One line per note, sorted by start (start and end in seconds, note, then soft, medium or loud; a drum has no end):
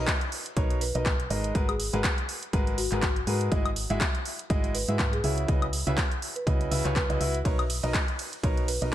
0.00 0.11 B2 medium
0.00 0.11 D#4 medium
0.00 0.11 A#4 medium
0.00 0.11 B4 medium
0.00 0.11 D#5 loud
0.07 kick loud
0.07 clap loud
0.07 closed hi-hat medium
0.21 closed hi-hat soft
0.32 open hi-hat medium
0.46 closed hi-hat soft
0.57 0.92 B1 loud
0.57 0.81 B2 loud
0.57 0.81 D#4 medium
0.57 0.81 A#4 medium
0.57 0.81 B4 medium
0.57 0.81 C#5 loud
0.57 kick loud
0.57 closed hi-hat medium
0.70 closed hi-hat soft
0.81 0.90 B4 medium
0.81 open hi-hat loud
0.95 1.28 B1 loud
0.95 1.09 B2 medium
0.95 1.09 D#4 medium
0.95 1.09 A#4 medium
0.95 1.09 B4 medium
0.95 1.02 B4 medium
0.95 1.09 D#5 medium
0.95 closed hi-hat soft
1.06 kick loud
1.06 clap loud
1.06 closed hi-hat medium
1.20 closed hi-hat soft
1.30 1.53 G#1 loud
1.30 1.52 G#3 medium
1.30 1.52 D#4 medium
1.30 1.52 A#4 medium
1.30 1.52 B4 medium
1.30 1.52 D#5 loud
1.30 open hi-hat medium
1.44 closed hi-hat soft
1.55 1.91 G#1 loud
1.55 1.71 G#3 medium
1.55 1.71 F#4 medium
1.55 1.71 G#4 medium
1.55 1.71 A#4 medium
1.55 1.71 B4 loud
1.55 kick loud
1.55 closed hi-hat medium
1.69 2.37 G#4 medium
1.69 closed hi-hat soft
1.69 high woodblock medium
1.80 open hi-hat loud
1.93 2.05 G#1 loud
1.93 2.07 G#3 medium
1.93 2.07 F#4 medium
1.93 2.07 G#4 medium
1.93 2.07 A#4 medium
1.93 2.07 B4 loud
1.93 closed hi-hat soft
2.04 kick loud
2.04 clap loud
2.04 closed hi-hat medium
2.18 closed hi-hat soft
2.29 open hi-hat loud
2.43 closed hi-hat soft
2.53 2.89 G#1 loud
2.53 2.78 G#3 loud
2.53 2.78 F#4 medium
2.53 2.78 G#4 medium
2.53 2.78 A#4 medium
2.53 2.78 B4 loud
2.53 kick loud
2.53 closed hi-hat medium
2.67 closed hi-hat soft
2.78 2.87 F#4 medium
2.78 open hi-hat loud
2.92 3.25 G#1 loud
2.92 3.06 G#3 medium
2.92 3.06 F#4 medium
2.92 3.06 G#4 medium
2.92 3.06 A#4 medium
2.92 3.06 B4 medium
2.92 clap soft
2.92 closed hi-hat soft
3.02 kick loud
3.02 clap loud
3.02 closed hi-hat medium
3.16 closed hi-hat soft
3.27 3.50 G#2 loud
3.27 3.49 G#3 medium
3.27 3.49 F#4 medium
3.27 3.49 G#4 medium
3.27 3.49 A#4 medium
3.27 3.49 B4 medium
3.27 open hi-hat loud
3.41 closed hi-hat soft
3.52 3.87 G#1 loud
3.52 3.68 G#3 loud
3.52 3.68 E4 medium
3.52 3.68 F#4 medium
3.52 3.68 G#4 medium
3.52 3.68 D#5 loud
3.52 kick loud
3.52 closed hi-hat medium
3.66 closed hi-hat soft
3.66 high woodblock medium
3.76 open hi-hat loud
3.90 4.01 G#1 medium
3.90 4.04 G#3 loud
3.90 4.04 E4 medium
3.90 4.04 F#4 medium
3.90 4.04 G#4 medium
3.90 4.04 E5 loud
3.90 closed hi-hat soft
4.01 kick loud
4.01 clap loud
4.01 closed hi-hat medium
4.15 closed hi-hat soft
4.25 open hi-hat medium
4.39 closed hi-hat soft
4.50 4.86 G#1 loud
4.50 4.74 G#3 loud
4.50 4.74 E4 medium
4.50 4.74 F#4 medium
4.50 4.74 G#4 medium
4.50 4.74 D#5 loud
4.50 kick loud
4.50 closed hi-hat medium
4.64 closed hi-hat soft
4.75 4.84 B4 medium
4.75 open hi-hat loud
4.88 5.22 G#2 loud
4.88 5.03 G#3 medium
4.88 5.03 E4 medium
4.88 5.03 F#4 medium
4.88 5.03 G#4 medium
4.88 4.95 B4 medium
4.88 5.03 E5 medium
4.88 closed hi-hat soft
4.99 kick loud
4.99 clap loud
4.99 closed hi-hat medium
5.13 5.27 G#4 loud
5.13 closed hi-hat soft
5.24 5.46 C#2 loud
5.24 5.46 C#3 medium
5.24 5.46 E4 medium
5.24 5.46 F#4 medium
5.24 5.46 G#4 medium
5.24 5.46 E5 medium
5.24 open hi-hat loud
5.38 closed hi-hat soft
5.48 5.84 C#2 loud
5.48 5.65 C#3 loud
5.48 5.65 E4 medium
5.48 5.65 F#4 medium
5.48 5.65 B4 medium
5.48 5.65 D#5 loud
5.48 kick loud
5.48 closed hi-hat medium
5.62 closed hi-hat soft
5.62 high woodblock medium
5.73 open hi-hat loud
5.87 5.98 C#2 loud
5.87 6.01 C#3 loud
5.87 6.01 E4 medium
5.87 6.01 F#4 medium
5.87 6.01 B4 medium
5.87 6.01 E5 loud
5.87 closed hi-hat soft
5.98 kick loud
5.98 clap loud
5.98 closed hi-hat medium
6.12 closed hi-hat soft
6.22 open hi-hat loud
6.36 6.50 B4 medium
6.36 closed hi-hat soft
6.47 6.69 C#2 medium
6.47 6.69 C#3 loud
6.47 6.69 E4 medium
6.47 6.69 F#4 medium
6.47 6.69 B4 medium
6.47 6.69 D#5 loud
6.47 kick loud
6.47 closed hi-hat medium
6.61 closed hi-hat soft
6.71 6.82 C#2 medium
6.71 6.83 C#3 loud
6.71 6.83 E4 medium
6.71 6.83 F#4 medium
6.71 6.83 B4 medium
6.71 6.83 E5 loud
6.71 open hi-hat loud
6.85 7.07 C#2 loud
6.85 6.99 C#3 loud
6.85 6.99 E4 medium
6.85 6.99 F#4 medium
6.85 6.99 B4 medium
6.85 6.99 C#5 loud
6.85 clap soft
6.85 closed hi-hat soft
6.96 7.51 B4 medium
6.96 kick loud
6.96 clap loud
6.96 closed hi-hat medium
7.10 7.18 C#2 loud
7.10 7.19 C#3 loud
7.10 7.19 E4 medium
7.10 7.19 F#4 medium
7.10 7.19 B4 medium
7.10 7.19 D#5 loud
7.10 closed hi-hat soft
7.20 7.43 C#2 loud
7.20 7.37 E4 medium
7.20 7.37 F#4 medium
7.20 7.37 B4 medium
7.20 7.37 E5 loud
7.20 open hi-hat loud
7.35 closed hi-hat soft
7.45 7.81 B1 medium
7.45 7.62 B2 medium
7.45 7.62 D#4 medium
7.45 7.62 A#4 medium
7.45 7.62 B4 medium
7.45 7.62 C#5 loud
7.45 kick loud
7.45 closed hi-hat medium
7.45 ride medium
7.59 closed hi-hat soft
7.59 high woodblock medium
7.70 open hi-hat loud
7.70 ride medium
7.83 7.95 B1 loud
7.83 7.98 B2 loud
7.83 7.98 D#4 medium
7.83 7.98 A#4 medium
7.83 7.98 B4 medium
7.83 7.98 D#5 loud
7.83 closed hi-hat soft
7.94 kick loud
7.94 clap loud
7.94 closed hi-hat medium
7.94 ride medium
8.08 closed hi-hat soft
8.19 open hi-hat medium
8.19 ride medium
8.33 closed hi-hat soft
8.43 8.79 B1 loud
8.43 8.68 B2 loud
8.43 8.68 D#4 medium
8.43 8.68 A#4 medium
8.43 8.68 B4 medium
8.43 8.68 C#5 loud
8.43 kick loud
8.43 closed hi-hat medium
8.43 ride medium
8.57 closed hi-hat soft
8.68 8.77 B4 medium
8.68 open hi-hat loud
8.68 ride medium
8.82 8.95 B1 loud
8.82 8.95 B2 medium
8.82 8.95 D#4 medium
8.82 8.95 A#4 medium
8.82 8.95 B4 medium
8.82 8.89 B4 medium
8.82 8.95 D#5 medium
8.82 closed hi-hat soft